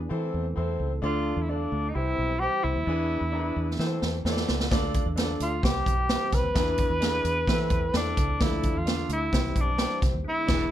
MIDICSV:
0, 0, Header, 1, 6, 480
1, 0, Start_track
1, 0, Key_signature, 0, "major"
1, 0, Tempo, 461538
1, 1062, Time_signature, 4, 2, 24, 8
1, 11140, End_track
2, 0, Start_track
2, 0, Title_t, "Grand piano"
2, 0, Program_c, 0, 0
2, 97, Note_on_c, 0, 60, 87
2, 101, Note_on_c, 0, 52, 76
2, 102, Note_on_c, 0, 64, 79
2, 103, Note_on_c, 0, 69, 81
2, 111, Note_on_c, 0, 72, 99
2, 448, Note_off_c, 0, 60, 0
2, 450, Note_off_c, 0, 64, 0
2, 451, Note_off_c, 0, 69, 0
2, 455, Note_off_c, 0, 72, 0
2, 579, Note_on_c, 0, 60, 88
2, 588, Note_on_c, 0, 64, 81
2, 591, Note_on_c, 0, 69, 76
2, 598, Note_on_c, 0, 72, 96
2, 779, Note_off_c, 0, 52, 0
2, 929, Note_off_c, 0, 60, 0
2, 933, Note_off_c, 0, 64, 0
2, 935, Note_off_c, 0, 69, 0
2, 938, Note_off_c, 0, 72, 0
2, 1059, Note_on_c, 0, 62, 91
2, 1060, Note_on_c, 0, 65, 89
2, 1069, Note_on_c, 0, 69, 87
2, 1071, Note_on_c, 0, 50, 65
2, 1077, Note_on_c, 0, 74, 105
2, 1409, Note_off_c, 0, 62, 0
2, 1410, Note_off_c, 0, 65, 0
2, 1414, Note_off_c, 0, 69, 0
2, 1418, Note_off_c, 0, 74, 0
2, 1542, Note_on_c, 0, 62, 70
2, 1545, Note_on_c, 0, 64, 50
2, 1550, Note_on_c, 0, 69, 66
2, 1556, Note_on_c, 0, 74, 80
2, 1601, Note_off_c, 0, 64, 0
2, 1607, Note_on_c, 0, 65, 63
2, 1745, Note_off_c, 0, 50, 0
2, 1890, Note_off_c, 0, 62, 0
2, 1895, Note_off_c, 0, 69, 0
2, 1897, Note_off_c, 0, 74, 0
2, 1923, Note_off_c, 0, 65, 0
2, 2016, Note_on_c, 0, 60, 74
2, 2020, Note_on_c, 0, 64, 70
2, 2024, Note_on_c, 0, 52, 65
2, 2027, Note_on_c, 0, 67, 67
2, 2032, Note_on_c, 0, 72, 82
2, 2368, Note_off_c, 0, 60, 0
2, 2370, Note_off_c, 0, 64, 0
2, 2373, Note_off_c, 0, 67, 0
2, 2376, Note_off_c, 0, 72, 0
2, 2503, Note_on_c, 0, 60, 77
2, 2511, Note_on_c, 0, 63, 53
2, 2513, Note_on_c, 0, 67, 65
2, 2521, Note_on_c, 0, 72, 83
2, 2562, Note_on_c, 0, 64, 67
2, 2564, Note_off_c, 0, 63, 0
2, 2702, Note_off_c, 0, 52, 0
2, 2851, Note_off_c, 0, 60, 0
2, 2856, Note_off_c, 0, 67, 0
2, 2860, Note_off_c, 0, 72, 0
2, 2880, Note_off_c, 0, 64, 0
2, 2992, Note_on_c, 0, 64, 88
2, 2993, Note_on_c, 0, 62, 92
2, 2996, Note_on_c, 0, 52, 63
2, 3000, Note_on_c, 0, 68, 85
2, 3007, Note_on_c, 0, 71, 101
2, 3336, Note_off_c, 0, 62, 0
2, 3336, Note_off_c, 0, 64, 0
2, 3340, Note_off_c, 0, 68, 0
2, 3343, Note_off_c, 0, 71, 0
2, 3453, Note_on_c, 0, 62, 82
2, 3460, Note_on_c, 0, 64, 77
2, 3464, Note_on_c, 0, 68, 76
2, 3468, Note_on_c, 0, 70, 73
2, 3523, Note_off_c, 0, 70, 0
2, 3526, Note_on_c, 0, 71, 85
2, 3668, Note_off_c, 0, 52, 0
2, 3806, Note_off_c, 0, 62, 0
2, 3810, Note_off_c, 0, 64, 0
2, 3812, Note_off_c, 0, 68, 0
2, 3843, Note_off_c, 0, 71, 0
2, 3945, Note_on_c, 0, 60, 84
2, 3946, Note_on_c, 0, 64, 81
2, 3948, Note_on_c, 0, 52, 79
2, 3953, Note_on_c, 0, 69, 83
2, 3957, Note_on_c, 0, 71, 78
2, 4007, Note_off_c, 0, 71, 0
2, 4017, Note_on_c, 0, 72, 95
2, 4293, Note_off_c, 0, 60, 0
2, 4293, Note_off_c, 0, 64, 0
2, 4297, Note_off_c, 0, 69, 0
2, 4329, Note_off_c, 0, 72, 0
2, 4421, Note_on_c, 0, 60, 88
2, 4425, Note_on_c, 0, 64, 78
2, 4433, Note_on_c, 0, 69, 80
2, 4435, Note_on_c, 0, 73, 74
2, 4487, Note_off_c, 0, 73, 0
2, 4499, Note_on_c, 0, 74, 94
2, 4624, Note_off_c, 0, 52, 0
2, 4771, Note_off_c, 0, 60, 0
2, 4773, Note_off_c, 0, 64, 0
2, 4777, Note_off_c, 0, 69, 0
2, 4810, Note_off_c, 0, 74, 0
2, 4895, Note_on_c, 0, 62, 104
2, 4901, Note_on_c, 0, 50, 75
2, 4903, Note_on_c, 0, 69, 92
2, 4904, Note_on_c, 0, 65, 101
2, 4911, Note_on_c, 0, 74, 123
2, 5248, Note_off_c, 0, 62, 0
2, 5252, Note_off_c, 0, 69, 0
2, 5253, Note_off_c, 0, 65, 0
2, 5256, Note_off_c, 0, 74, 0
2, 5365, Note_on_c, 0, 62, 83
2, 5367, Note_on_c, 0, 65, 78
2, 5373, Note_on_c, 0, 69, 81
2, 5382, Note_on_c, 0, 72, 72
2, 5441, Note_off_c, 0, 72, 0
2, 5441, Note_on_c, 0, 74, 92
2, 5581, Note_off_c, 0, 50, 0
2, 5723, Note_off_c, 0, 62, 0
2, 5724, Note_off_c, 0, 65, 0
2, 5727, Note_off_c, 0, 69, 0
2, 5761, Note_off_c, 0, 74, 0
2, 5848, Note_on_c, 0, 64, 65
2, 5850, Note_on_c, 0, 60, 78
2, 5851, Note_on_c, 0, 52, 66
2, 5855, Note_on_c, 0, 67, 68
2, 5863, Note_on_c, 0, 72, 81
2, 6205, Note_off_c, 0, 64, 0
2, 6206, Note_off_c, 0, 60, 0
2, 6208, Note_off_c, 0, 67, 0
2, 6212, Note_off_c, 0, 72, 0
2, 6327, Note_on_c, 0, 60, 72
2, 6333, Note_on_c, 0, 64, 72
2, 6338, Note_on_c, 0, 67, 68
2, 6343, Note_on_c, 0, 71, 66
2, 6397, Note_on_c, 0, 72, 83
2, 6401, Note_off_c, 0, 71, 0
2, 6536, Note_off_c, 0, 52, 0
2, 6684, Note_off_c, 0, 60, 0
2, 6687, Note_off_c, 0, 64, 0
2, 6690, Note_off_c, 0, 67, 0
2, 6719, Note_off_c, 0, 72, 0
2, 6806, Note_on_c, 0, 62, 91
2, 6811, Note_on_c, 0, 64, 90
2, 6815, Note_on_c, 0, 68, 85
2, 6816, Note_on_c, 0, 52, 64
2, 6825, Note_on_c, 0, 70, 85
2, 6879, Note_on_c, 0, 71, 100
2, 6882, Note_off_c, 0, 70, 0
2, 7164, Note_off_c, 0, 62, 0
2, 7166, Note_off_c, 0, 64, 0
2, 7168, Note_off_c, 0, 68, 0
2, 7200, Note_off_c, 0, 71, 0
2, 7283, Note_on_c, 0, 62, 81
2, 7295, Note_on_c, 0, 64, 76
2, 7298, Note_on_c, 0, 68, 78
2, 7304, Note_on_c, 0, 69, 75
2, 7362, Note_off_c, 0, 69, 0
2, 7366, Note_on_c, 0, 71, 95
2, 7498, Note_off_c, 0, 52, 0
2, 7642, Note_off_c, 0, 62, 0
2, 7648, Note_off_c, 0, 64, 0
2, 7650, Note_off_c, 0, 68, 0
2, 7684, Note_off_c, 0, 71, 0
2, 7782, Note_on_c, 0, 64, 77
2, 7783, Note_on_c, 0, 60, 89
2, 7790, Note_on_c, 0, 69, 78
2, 7791, Note_on_c, 0, 52, 77
2, 7794, Note_on_c, 0, 76, 93
2, 8132, Note_off_c, 0, 60, 0
2, 8132, Note_off_c, 0, 64, 0
2, 8136, Note_off_c, 0, 69, 0
2, 8138, Note_off_c, 0, 76, 0
2, 8252, Note_on_c, 0, 60, 76
2, 8254, Note_on_c, 0, 64, 71
2, 8261, Note_on_c, 0, 69, 69
2, 8266, Note_on_c, 0, 74, 86
2, 8466, Note_off_c, 0, 52, 0
2, 8606, Note_off_c, 0, 60, 0
2, 8608, Note_off_c, 0, 64, 0
2, 8611, Note_off_c, 0, 69, 0
2, 8613, Note_off_c, 0, 74, 0
2, 8736, Note_on_c, 0, 62, 91
2, 8742, Note_on_c, 0, 50, 65
2, 8742, Note_on_c, 0, 53, 85
2, 8747, Note_on_c, 0, 69, 90
2, 8750, Note_on_c, 0, 74, 106
2, 9088, Note_off_c, 0, 62, 0
2, 9091, Note_off_c, 0, 53, 0
2, 9094, Note_off_c, 0, 69, 0
2, 9095, Note_off_c, 0, 74, 0
2, 9214, Note_on_c, 0, 62, 70
2, 9218, Note_on_c, 0, 65, 62
2, 9224, Note_on_c, 0, 69, 64
2, 9232, Note_on_c, 0, 74, 73
2, 9421, Note_off_c, 0, 50, 0
2, 9567, Note_off_c, 0, 62, 0
2, 9569, Note_off_c, 0, 65, 0
2, 9572, Note_off_c, 0, 69, 0
2, 9576, Note_off_c, 0, 74, 0
2, 9694, Note_on_c, 0, 60, 77
2, 9697, Note_on_c, 0, 63, 56
2, 9698, Note_on_c, 0, 52, 64
2, 9704, Note_on_c, 0, 67, 72
2, 9710, Note_on_c, 0, 72, 80
2, 9752, Note_on_c, 0, 64, 66
2, 9757, Note_off_c, 0, 63, 0
2, 10047, Note_off_c, 0, 60, 0
2, 10052, Note_off_c, 0, 67, 0
2, 10055, Note_off_c, 0, 72, 0
2, 10076, Note_off_c, 0, 64, 0
2, 10177, Note_on_c, 0, 60, 77
2, 10181, Note_on_c, 0, 64, 70
2, 10186, Note_on_c, 0, 67, 71
2, 10190, Note_on_c, 0, 71, 65
2, 10244, Note_off_c, 0, 71, 0
2, 10252, Note_on_c, 0, 72, 85
2, 10378, Note_off_c, 0, 52, 0
2, 10528, Note_off_c, 0, 60, 0
2, 10530, Note_off_c, 0, 64, 0
2, 10533, Note_off_c, 0, 67, 0
2, 10566, Note_off_c, 0, 72, 0
2, 10888, Note_on_c, 0, 62, 102
2, 10893, Note_on_c, 0, 52, 102
2, 10895, Note_on_c, 0, 64, 106
2, 10903, Note_on_c, 0, 71, 97
2, 10959, Note_on_c, 0, 68, 96
2, 11057, Note_off_c, 0, 62, 0
2, 11060, Note_off_c, 0, 52, 0
2, 11061, Note_off_c, 0, 64, 0
2, 11066, Note_off_c, 0, 71, 0
2, 11098, Note_off_c, 0, 68, 0
2, 11140, End_track
3, 0, Start_track
3, 0, Title_t, "Tenor saxophone"
3, 0, Program_c, 1, 66
3, 1085, Note_on_c, 1, 65, 92
3, 1478, Note_on_c, 1, 64, 66
3, 1493, Note_off_c, 1, 65, 0
3, 1552, Note_on_c, 1, 62, 89
3, 1568, Note_off_c, 1, 64, 0
3, 1965, Note_on_c, 1, 63, 75
3, 1981, Note_off_c, 1, 62, 0
3, 2022, Note_on_c, 1, 64, 98
3, 2037, Note_off_c, 1, 63, 0
3, 2488, Note_on_c, 1, 67, 115
3, 2503, Note_off_c, 1, 64, 0
3, 2736, Note_on_c, 1, 64, 94
3, 2751, Note_off_c, 1, 67, 0
3, 4180, Note_off_c, 1, 64, 0
3, 5636, Note_on_c, 1, 65, 90
3, 5867, Note_on_c, 1, 67, 106
3, 5882, Note_off_c, 1, 65, 0
3, 6594, Note_on_c, 1, 71, 114
3, 6609, Note_off_c, 1, 67, 0
3, 8269, Note_off_c, 1, 71, 0
3, 8284, Note_on_c, 1, 62, 97
3, 8759, Note_on_c, 1, 64, 92
3, 8775, Note_off_c, 1, 62, 0
3, 9133, Note_on_c, 1, 65, 93
3, 9148, Note_off_c, 1, 64, 0
3, 9478, Note_off_c, 1, 65, 0
3, 9490, Note_on_c, 1, 64, 91
3, 9987, Note_on_c, 1, 62, 77
3, 10003, Note_off_c, 1, 64, 0
3, 10404, Note_off_c, 1, 62, 0
3, 10695, Note_on_c, 1, 64, 117
3, 11140, Note_off_c, 1, 64, 0
3, 11140, End_track
4, 0, Start_track
4, 0, Title_t, "Tonewheel organ"
4, 0, Program_c, 2, 16
4, 0, Note_on_c, 2, 52, 64
4, 100, Note_on_c, 2, 69, 75
4, 104, Note_on_c, 2, 60, 63
4, 106, Note_on_c, 2, 57, 59
4, 1041, Note_off_c, 2, 52, 0
4, 1051, Note_off_c, 2, 69, 0
4, 1053, Note_off_c, 2, 60, 0
4, 1068, Note_on_c, 2, 69, 76
4, 1069, Note_on_c, 2, 62, 57
4, 1075, Note_on_c, 2, 65, 62
4, 2005, Note_off_c, 2, 57, 0
4, 2016, Note_off_c, 2, 62, 0
4, 2016, Note_off_c, 2, 69, 0
4, 2019, Note_off_c, 2, 65, 0
4, 2026, Note_on_c, 2, 55, 57
4, 2028, Note_on_c, 2, 67, 69
4, 2034, Note_on_c, 2, 60, 56
4, 2035, Note_on_c, 2, 52, 68
4, 2972, Note_off_c, 2, 52, 0
4, 2975, Note_off_c, 2, 55, 0
4, 2976, Note_off_c, 2, 67, 0
4, 2979, Note_off_c, 2, 60, 0
4, 2979, Note_on_c, 2, 68, 72
4, 2983, Note_on_c, 2, 62, 60
4, 2984, Note_on_c, 2, 52, 63
4, 2984, Note_on_c, 2, 59, 60
4, 3932, Note_off_c, 2, 68, 0
4, 3934, Note_off_c, 2, 52, 0
4, 3934, Note_off_c, 2, 59, 0
4, 3934, Note_off_c, 2, 62, 0
4, 3945, Note_on_c, 2, 57, 55
4, 3948, Note_on_c, 2, 52, 64
4, 3948, Note_on_c, 2, 60, 57
4, 3949, Note_on_c, 2, 69, 68
4, 4883, Note_off_c, 2, 57, 0
4, 4895, Note_on_c, 2, 57, 62
4, 4896, Note_off_c, 2, 52, 0
4, 4897, Note_off_c, 2, 60, 0
4, 4900, Note_on_c, 2, 62, 60
4, 5848, Note_off_c, 2, 69, 0
4, 5850, Note_off_c, 2, 57, 0
4, 5853, Note_off_c, 2, 62, 0
4, 5858, Note_on_c, 2, 55, 57
4, 5860, Note_on_c, 2, 52, 66
4, 5865, Note_on_c, 2, 60, 60
4, 5867, Note_on_c, 2, 67, 70
4, 6806, Note_on_c, 2, 62, 61
4, 6807, Note_on_c, 2, 59, 62
4, 6809, Note_on_c, 2, 68, 75
4, 6812, Note_off_c, 2, 55, 0
4, 6815, Note_off_c, 2, 60, 0
4, 6816, Note_off_c, 2, 67, 0
4, 7756, Note_off_c, 2, 52, 0
4, 7765, Note_off_c, 2, 62, 0
4, 7766, Note_off_c, 2, 59, 0
4, 7767, Note_off_c, 2, 68, 0
4, 7767, Note_on_c, 2, 60, 60
4, 7769, Note_on_c, 2, 52, 65
4, 7772, Note_on_c, 2, 57, 59
4, 7774, Note_on_c, 2, 69, 71
4, 8726, Note_off_c, 2, 60, 0
4, 8727, Note_off_c, 2, 52, 0
4, 8749, Note_on_c, 2, 62, 64
4, 8756, Note_on_c, 2, 50, 68
4, 9678, Note_off_c, 2, 57, 0
4, 9679, Note_off_c, 2, 69, 0
4, 9696, Note_off_c, 2, 62, 0
4, 9700, Note_off_c, 2, 50, 0
4, 9705, Note_on_c, 2, 52, 65
4, 9709, Note_on_c, 2, 55, 59
4, 9712, Note_on_c, 2, 67, 73
4, 9715, Note_on_c, 2, 60, 59
4, 10654, Note_off_c, 2, 52, 0
4, 10656, Note_off_c, 2, 55, 0
4, 10656, Note_on_c, 2, 50, 68
4, 10657, Note_off_c, 2, 67, 0
4, 10657, Note_on_c, 2, 56, 60
4, 10658, Note_off_c, 2, 60, 0
4, 10660, Note_on_c, 2, 64, 79
4, 10664, Note_on_c, 2, 59, 61
4, 11140, Note_off_c, 2, 50, 0
4, 11140, Note_off_c, 2, 56, 0
4, 11140, Note_off_c, 2, 59, 0
4, 11140, Note_off_c, 2, 64, 0
4, 11140, End_track
5, 0, Start_track
5, 0, Title_t, "Fingered electric bass"
5, 0, Program_c, 3, 33
5, 112, Note_on_c, 3, 52, 95
5, 310, Note_off_c, 3, 52, 0
5, 352, Note_on_c, 3, 40, 88
5, 550, Note_off_c, 3, 40, 0
5, 594, Note_on_c, 3, 40, 87
5, 791, Note_off_c, 3, 40, 0
5, 827, Note_on_c, 3, 37, 78
5, 1027, Note_off_c, 3, 37, 0
5, 1065, Note_on_c, 3, 38, 110
5, 1367, Note_off_c, 3, 38, 0
5, 1419, Note_on_c, 3, 40, 90
5, 1723, Note_off_c, 3, 40, 0
5, 1788, Note_on_c, 3, 38, 90
5, 1988, Note_off_c, 3, 38, 0
5, 2030, Note_on_c, 3, 36, 90
5, 2229, Note_off_c, 3, 36, 0
5, 2268, Note_on_c, 3, 35, 81
5, 2569, Note_off_c, 3, 35, 0
5, 2747, Note_on_c, 3, 36, 77
5, 2846, Note_off_c, 3, 36, 0
5, 2864, Note_on_c, 3, 39, 83
5, 2964, Note_off_c, 3, 39, 0
5, 2984, Note_on_c, 3, 40, 108
5, 3287, Note_off_c, 3, 40, 0
5, 3338, Note_on_c, 3, 40, 83
5, 3643, Note_off_c, 3, 40, 0
5, 3705, Note_on_c, 3, 40, 89
5, 3906, Note_off_c, 3, 40, 0
5, 3942, Note_on_c, 3, 52, 94
5, 4144, Note_off_c, 3, 52, 0
5, 4184, Note_on_c, 3, 40, 81
5, 4385, Note_off_c, 3, 40, 0
5, 4417, Note_on_c, 3, 40, 92
5, 4622, Note_off_c, 3, 40, 0
5, 4669, Note_on_c, 3, 37, 77
5, 4869, Note_off_c, 3, 37, 0
5, 4903, Note_on_c, 3, 38, 100
5, 5206, Note_off_c, 3, 38, 0
5, 5262, Note_on_c, 3, 40, 85
5, 5566, Note_off_c, 3, 40, 0
5, 5617, Note_on_c, 3, 38, 82
5, 5822, Note_off_c, 3, 38, 0
5, 5856, Note_on_c, 3, 36, 91
5, 6062, Note_off_c, 3, 36, 0
5, 6098, Note_on_c, 3, 35, 81
5, 6403, Note_off_c, 3, 35, 0
5, 6579, Note_on_c, 3, 36, 80
5, 6682, Note_off_c, 3, 36, 0
5, 6688, Note_on_c, 3, 39, 82
5, 6796, Note_off_c, 3, 39, 0
5, 6815, Note_on_c, 3, 40, 99
5, 7122, Note_off_c, 3, 40, 0
5, 7176, Note_on_c, 3, 40, 90
5, 7482, Note_off_c, 3, 40, 0
5, 7534, Note_on_c, 3, 40, 88
5, 7740, Note_off_c, 3, 40, 0
5, 7773, Note_on_c, 3, 52, 106
5, 7980, Note_off_c, 3, 52, 0
5, 8015, Note_on_c, 3, 40, 86
5, 8221, Note_off_c, 3, 40, 0
5, 8254, Note_on_c, 3, 40, 98
5, 8460, Note_off_c, 3, 40, 0
5, 8501, Note_on_c, 3, 37, 82
5, 8704, Note_off_c, 3, 37, 0
5, 8744, Note_on_c, 3, 38, 117
5, 9047, Note_off_c, 3, 38, 0
5, 9096, Note_on_c, 3, 40, 88
5, 9402, Note_off_c, 3, 40, 0
5, 9453, Note_on_c, 3, 38, 92
5, 9659, Note_off_c, 3, 38, 0
5, 9702, Note_on_c, 3, 36, 109
5, 9904, Note_off_c, 3, 36, 0
5, 9938, Note_on_c, 3, 35, 83
5, 10243, Note_off_c, 3, 35, 0
5, 10422, Note_on_c, 3, 36, 86
5, 10523, Note_off_c, 3, 36, 0
5, 10544, Note_on_c, 3, 39, 80
5, 10644, Note_off_c, 3, 39, 0
5, 10908, Note_on_c, 3, 28, 97
5, 11069, Note_off_c, 3, 28, 0
5, 11140, End_track
6, 0, Start_track
6, 0, Title_t, "Drums"
6, 3948, Note_on_c, 9, 38, 57
6, 4052, Note_off_c, 9, 38, 0
6, 4182, Note_on_c, 9, 38, 68
6, 4286, Note_off_c, 9, 38, 0
6, 4429, Note_on_c, 9, 38, 89
6, 4533, Note_off_c, 9, 38, 0
6, 4543, Note_on_c, 9, 38, 79
6, 4647, Note_off_c, 9, 38, 0
6, 4663, Note_on_c, 9, 38, 102
6, 4767, Note_off_c, 9, 38, 0
6, 4787, Note_on_c, 9, 38, 95
6, 4891, Note_off_c, 9, 38, 0
6, 4903, Note_on_c, 9, 36, 112
6, 4904, Note_on_c, 9, 38, 98
6, 4904, Note_on_c, 9, 42, 83
6, 5007, Note_off_c, 9, 36, 0
6, 5008, Note_off_c, 9, 38, 0
6, 5008, Note_off_c, 9, 42, 0
6, 5140, Note_on_c, 9, 42, 66
6, 5144, Note_on_c, 9, 36, 89
6, 5244, Note_off_c, 9, 42, 0
6, 5248, Note_off_c, 9, 36, 0
6, 5380, Note_on_c, 9, 42, 80
6, 5389, Note_on_c, 9, 38, 98
6, 5484, Note_off_c, 9, 42, 0
6, 5493, Note_off_c, 9, 38, 0
6, 5619, Note_on_c, 9, 42, 65
6, 5723, Note_off_c, 9, 42, 0
6, 5858, Note_on_c, 9, 36, 88
6, 5872, Note_on_c, 9, 38, 112
6, 5875, Note_on_c, 9, 42, 89
6, 5962, Note_off_c, 9, 36, 0
6, 5976, Note_off_c, 9, 38, 0
6, 5979, Note_off_c, 9, 42, 0
6, 6098, Note_on_c, 9, 36, 92
6, 6107, Note_on_c, 9, 42, 69
6, 6202, Note_off_c, 9, 36, 0
6, 6211, Note_off_c, 9, 42, 0
6, 6337, Note_on_c, 9, 38, 119
6, 6347, Note_on_c, 9, 42, 92
6, 6441, Note_off_c, 9, 38, 0
6, 6451, Note_off_c, 9, 42, 0
6, 6577, Note_on_c, 9, 42, 90
6, 6578, Note_on_c, 9, 36, 98
6, 6586, Note_on_c, 9, 38, 36
6, 6681, Note_off_c, 9, 42, 0
6, 6682, Note_off_c, 9, 36, 0
6, 6690, Note_off_c, 9, 38, 0
6, 6818, Note_on_c, 9, 36, 102
6, 6818, Note_on_c, 9, 38, 102
6, 6818, Note_on_c, 9, 42, 91
6, 6922, Note_off_c, 9, 36, 0
6, 6922, Note_off_c, 9, 38, 0
6, 6922, Note_off_c, 9, 42, 0
6, 7047, Note_on_c, 9, 42, 70
6, 7057, Note_on_c, 9, 36, 89
6, 7151, Note_off_c, 9, 42, 0
6, 7161, Note_off_c, 9, 36, 0
6, 7297, Note_on_c, 9, 42, 79
6, 7307, Note_on_c, 9, 38, 97
6, 7401, Note_off_c, 9, 42, 0
6, 7411, Note_off_c, 9, 38, 0
6, 7536, Note_on_c, 9, 42, 65
6, 7640, Note_off_c, 9, 42, 0
6, 7774, Note_on_c, 9, 36, 90
6, 7784, Note_on_c, 9, 38, 116
6, 7787, Note_on_c, 9, 42, 84
6, 7878, Note_off_c, 9, 36, 0
6, 7888, Note_off_c, 9, 38, 0
6, 7891, Note_off_c, 9, 42, 0
6, 8007, Note_on_c, 9, 42, 69
6, 8012, Note_on_c, 9, 36, 94
6, 8111, Note_off_c, 9, 42, 0
6, 8116, Note_off_c, 9, 36, 0
6, 8255, Note_on_c, 9, 38, 119
6, 8265, Note_on_c, 9, 42, 90
6, 8359, Note_off_c, 9, 38, 0
6, 8369, Note_off_c, 9, 42, 0
6, 8500, Note_on_c, 9, 36, 98
6, 8501, Note_on_c, 9, 42, 91
6, 8604, Note_off_c, 9, 36, 0
6, 8605, Note_off_c, 9, 42, 0
6, 8741, Note_on_c, 9, 38, 106
6, 8741, Note_on_c, 9, 42, 89
6, 8743, Note_on_c, 9, 36, 113
6, 8845, Note_off_c, 9, 38, 0
6, 8845, Note_off_c, 9, 42, 0
6, 8847, Note_off_c, 9, 36, 0
6, 8978, Note_on_c, 9, 42, 66
6, 8984, Note_on_c, 9, 36, 90
6, 9082, Note_off_c, 9, 42, 0
6, 9088, Note_off_c, 9, 36, 0
6, 9223, Note_on_c, 9, 42, 79
6, 9232, Note_on_c, 9, 38, 101
6, 9327, Note_off_c, 9, 42, 0
6, 9336, Note_off_c, 9, 38, 0
6, 9457, Note_on_c, 9, 42, 66
6, 9561, Note_off_c, 9, 42, 0
6, 9701, Note_on_c, 9, 36, 90
6, 9710, Note_on_c, 9, 38, 121
6, 9714, Note_on_c, 9, 42, 93
6, 9805, Note_off_c, 9, 36, 0
6, 9814, Note_off_c, 9, 38, 0
6, 9818, Note_off_c, 9, 42, 0
6, 9939, Note_on_c, 9, 36, 93
6, 9941, Note_on_c, 9, 42, 69
6, 10043, Note_off_c, 9, 36, 0
6, 10045, Note_off_c, 9, 42, 0
6, 10174, Note_on_c, 9, 38, 120
6, 10184, Note_on_c, 9, 42, 89
6, 10278, Note_off_c, 9, 38, 0
6, 10288, Note_off_c, 9, 42, 0
6, 10423, Note_on_c, 9, 36, 102
6, 10425, Note_on_c, 9, 42, 94
6, 10435, Note_on_c, 9, 38, 36
6, 10527, Note_off_c, 9, 36, 0
6, 10529, Note_off_c, 9, 42, 0
6, 10539, Note_off_c, 9, 38, 0
6, 10903, Note_on_c, 9, 38, 104
6, 10903, Note_on_c, 9, 49, 84
6, 10905, Note_on_c, 9, 36, 109
6, 11007, Note_off_c, 9, 38, 0
6, 11007, Note_off_c, 9, 49, 0
6, 11009, Note_off_c, 9, 36, 0
6, 11140, End_track
0, 0, End_of_file